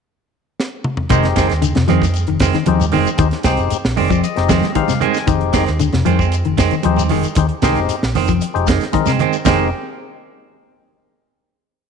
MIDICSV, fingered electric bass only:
0, 0, Header, 1, 3, 480
1, 0, Start_track
1, 0, Key_signature, -4, "minor"
1, 0, Tempo, 521286
1, 1017, Time_signature, 4, 2, 24, 8
1, 10950, End_track
2, 0, Start_track
2, 0, Title_t, "Fingered electric bass"
2, 0, Program_c, 0, 33
2, 1015, Note_on_c, 0, 29, 90
2, 1227, Note_off_c, 0, 29, 0
2, 1258, Note_on_c, 0, 29, 77
2, 1364, Note_off_c, 0, 29, 0
2, 1392, Note_on_c, 0, 39, 75
2, 1597, Note_off_c, 0, 39, 0
2, 1625, Note_on_c, 0, 41, 95
2, 1726, Note_off_c, 0, 41, 0
2, 1748, Note_on_c, 0, 41, 83
2, 2060, Note_off_c, 0, 41, 0
2, 2108, Note_on_c, 0, 29, 80
2, 2208, Note_off_c, 0, 29, 0
2, 2214, Note_on_c, 0, 29, 71
2, 2321, Note_off_c, 0, 29, 0
2, 2460, Note_on_c, 0, 39, 91
2, 2669, Note_off_c, 0, 39, 0
2, 2704, Note_on_c, 0, 29, 74
2, 2807, Note_off_c, 0, 29, 0
2, 2936, Note_on_c, 0, 39, 88
2, 3042, Note_off_c, 0, 39, 0
2, 3173, Note_on_c, 0, 36, 84
2, 3281, Note_off_c, 0, 36, 0
2, 3302, Note_on_c, 0, 29, 77
2, 3405, Note_off_c, 0, 29, 0
2, 3544, Note_on_c, 0, 34, 82
2, 3646, Note_off_c, 0, 34, 0
2, 3663, Note_on_c, 0, 29, 85
2, 3873, Note_off_c, 0, 29, 0
2, 4028, Note_on_c, 0, 29, 83
2, 4236, Note_off_c, 0, 29, 0
2, 4858, Note_on_c, 0, 29, 92
2, 5071, Note_off_c, 0, 29, 0
2, 5101, Note_on_c, 0, 29, 81
2, 5208, Note_off_c, 0, 29, 0
2, 5231, Note_on_c, 0, 39, 82
2, 5439, Note_off_c, 0, 39, 0
2, 5468, Note_on_c, 0, 41, 97
2, 5571, Note_off_c, 0, 41, 0
2, 5588, Note_on_c, 0, 41, 86
2, 5905, Note_off_c, 0, 41, 0
2, 5955, Note_on_c, 0, 29, 83
2, 6056, Note_off_c, 0, 29, 0
2, 6061, Note_on_c, 0, 29, 72
2, 6169, Note_off_c, 0, 29, 0
2, 6307, Note_on_c, 0, 39, 101
2, 6518, Note_off_c, 0, 39, 0
2, 6555, Note_on_c, 0, 29, 82
2, 6657, Note_off_c, 0, 29, 0
2, 6784, Note_on_c, 0, 39, 92
2, 6892, Note_off_c, 0, 39, 0
2, 7025, Note_on_c, 0, 36, 80
2, 7132, Note_off_c, 0, 36, 0
2, 7159, Note_on_c, 0, 29, 80
2, 7259, Note_off_c, 0, 29, 0
2, 7395, Note_on_c, 0, 34, 86
2, 7497, Note_off_c, 0, 34, 0
2, 7520, Note_on_c, 0, 29, 78
2, 7726, Note_off_c, 0, 29, 0
2, 7876, Note_on_c, 0, 29, 79
2, 8084, Note_off_c, 0, 29, 0
2, 8709, Note_on_c, 0, 29, 88
2, 8931, Note_off_c, 0, 29, 0
2, 10950, End_track
3, 0, Start_track
3, 0, Title_t, "Muted fingered electric bass strokes"
3, 3061, Note_on_c, 9, 29, 35
3, 3153, Note_off_c, 9, 29, 0
3, 6917, Note_on_c, 9, 29, 34
3, 7009, Note_off_c, 9, 29, 0
3, 10950, End_track
0, 0, End_of_file